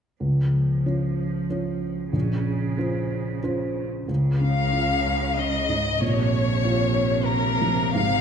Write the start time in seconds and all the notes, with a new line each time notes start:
0.20 C#2 F3
0.86 C#4 F4 C#5
1.50 C#4 F4 C#5
2.13 A#1 C#3
2.77 C#4 F4 C5
3.43 C#4 F4 C5
4.08 C#2 C#3
4.41 C#4 F5
4.72 F4
5.05 C#5
5.37 C#4 D#5
5.69 G#2
6.00 A#1 A#2 C3 C#5
6.33 C#5
6.65 F4
6.96 C#5
7.28 A#4 C#5
7.61 F3
7.94 G#1 G#2 F5